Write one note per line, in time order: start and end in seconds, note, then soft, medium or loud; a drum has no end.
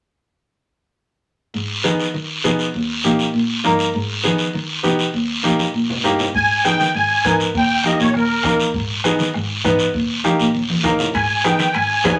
1.54 1.84 G#2 medium
1.54 high conga soft
1.54 long guiro medium
1.84 2.08 D#3 medium
1.84 2.05 B3 medium
1.84 2.05 D#4 medium
1.84 2.05 G#4 medium
1.84 high conga medium
1.84 short guiro medium
1.99 short guiro medium
2.14 2.26 D#3 medium
2.14 high conga soft
2.14 long guiro medium
2.44 2.69 B2 medium
2.44 2.65 B3 medium
2.44 2.65 D#4 medium
2.44 2.65 G#4 medium
2.44 high conga medium
2.44 short guiro medium
2.59 short guiro medium
2.74 3.04 D#2 medium
2.74 high conga soft
2.74 long guiro medium
3.04 3.29 A#2 medium
3.04 3.25 A#3 medium
3.04 3.25 D#4 medium
3.04 3.26 G4 medium
3.04 high conga medium
3.04 short guiro medium
3.19 short guiro medium
3.34 3.46 A#2 medium
3.34 high conga soft
3.34 long guiro medium
3.64 3.89 G2 medium
3.64 3.85 A#3 medium
3.64 3.86 D#4 medium
3.64 3.86 A#4 medium
3.64 high conga medium
3.64 short guiro medium
3.79 short guiro medium
3.94 4.24 G#2 medium
3.94 high conga soft
3.94 long guiro medium
4.23 4.49 D#3 medium
4.23 4.45 B3 medium
4.23 4.45 D#4 medium
4.23 4.46 G#4 medium
4.23 high conga medium
4.23 short guiro medium
4.38 short guiro medium
4.53 4.66 D#3 medium
4.53 high conga soft
4.53 long guiro medium
4.83 5.08 B2 medium
4.83 5.05 B3 medium
4.83 5.05 D#4 medium
4.83 5.05 G4 medium
4.83 high conga medium
4.83 short guiro medium
4.99 short guiro medium
5.14 5.43 D#2 medium
5.14 high conga soft
5.14 long guiro medium
5.43 5.68 A#2 medium
5.43 5.65 A#3 medium
5.43 5.65 D#4 medium
5.43 5.65 G4 medium
5.43 high conga medium
5.43 short guiro medium
5.59 high conga medium
5.59 short guiro medium
5.74 5.86 A#2 medium
5.74 long guiro medium
5.90 low conga medium
6.04 6.29 G2 medium
6.04 6.25 A#3 medium
6.04 6.25 D#4 medium
6.04 6.26 G4 medium
6.04 low conga medium
6.04 short guiro medium
6.19 low conga medium
6.19 short guiro medium
6.35 6.71 G#2 medium
6.35 6.66 G#5 loud
6.35 bombo low medium
6.35 high conga soft
6.35 long guiro medium
6.64 6.86 B3 medium
6.64 6.86 D#4 medium
6.64 6.86 G#4 medium
6.64 6.92 G5 medium
6.64 bombo rim medium
6.64 high conga medium
6.64 short guiro medium
6.80 6.92 D#3 medium
6.80 short guiro medium
6.94 7.19 G#2 medium
6.94 7.37 G#5 medium
6.94 high conga soft
6.94 long guiro medium
7.25 7.49 G#2 medium
7.25 7.46 B3 medium
7.25 7.46 D#4 medium
7.25 7.46 A#4 medium
7.25 bombo low medium
7.25 bombo rim medium
7.25 high conga medium
7.25 short guiro medium
7.40 short guiro medium
7.55 7.91 D#2 medium
7.55 7.87 G5 medium
7.55 bombo low medium
7.55 high conga soft
7.55 long guiro medium
7.84 8.06 A#3 medium
7.84 8.06 D#4 medium
7.84 8.06 G4 medium
7.84 7.99 D#5 medium
7.84 bombo rim medium
7.84 high conga medium
7.84 short guiro medium
8.00 8.12 A#2 medium
8.00 8.14 C#5 medium
8.00 short guiro medium
8.14 8.39 D#2 medium
8.14 8.57 A#4 medium
8.14 bombo rim medium
8.14 high conga soft
8.14 long guiro medium
8.43 8.68 D#2 medium
8.43 8.65 A#3 medium
8.43 8.65 D#4 medium
8.43 8.66 A#4 medium
8.43 bombo low medium
8.43 bombo rim medium
8.43 high conga medium
8.43 short guiro medium
8.60 short guiro medium
8.74 9.10 G#2 medium
8.74 bombo low medium
8.74 high conga soft
8.74 long guiro medium
9.04 9.26 B3 medium
9.04 9.26 D#4 medium
9.04 9.26 G#4 medium
9.04 bombo rim medium
9.04 high conga medium
9.04 short guiro medium
9.19 9.32 D#3 medium
9.19 short guiro medium
9.34 9.59 G#2 medium
9.34 bombo rim medium
9.34 high conga soft
9.34 long guiro medium
9.64 9.89 G#2 medium
9.64 9.86 B3 medium
9.64 9.86 D#4 medium
9.64 9.86 B4 medium
9.64 bombo low medium
9.64 bombo rim medium
9.64 high conga medium
9.64 short guiro medium
9.79 short guiro medium
9.94 10.30 D#2 medium
9.94 bombo low medium
9.94 high conga soft
9.94 long guiro medium
10.24 10.45 A#3 medium
10.24 10.46 D#4 medium
10.24 10.46 G4 medium
10.24 bombo rim medium
10.24 high conga medium
10.24 short guiro medium
10.40 10.52 A#2 medium
10.40 short guiro medium
10.55 10.79 D#2 medium
10.55 high conga soft
10.55 long guiro medium
10.70 high conga medium
10.83 11.08 D#3 medium
10.83 11.05 A#3 medium
10.83 11.05 D#4 medium
10.83 11.05 A#4 medium
10.83 bombo low medium
10.83 bombo rim medium
10.83 low conga medium
10.83 short guiro medium
10.99 low conga medium
10.99 short guiro medium
11.14 11.50 G#2 medium
11.14 11.45 G#5 medium
11.14 bombo low medium
11.14 high conga soft
11.14 high timbale medium
11.14 long guiro medium
11.44 11.65 B3 medium
11.44 11.66 D#4 medium
11.44 11.66 G#4 medium
11.44 11.75 G5 medium
11.44 bombo rim medium
11.44 high conga medium
11.44 high timbale medium
11.44 short guiro medium
11.59 11.71 D#3 medium
11.59 high timbale medium
11.59 short guiro medium
11.73 11.99 G#2 medium
11.73 12.15 G#5 medium
11.73 high conga soft
11.73 high timbale medium
11.73 long guiro medium
12.04 12.19 E2 medium
12.04 12.19 B3 medium
12.04 12.19 D#4 medium
12.04 12.19 G#4 medium
12.04 bombo low medium
12.04 bombo rim medium
12.04 high conga medium
12.04 high timbale medium
12.04 low timbale medium
12.04 short guiro medium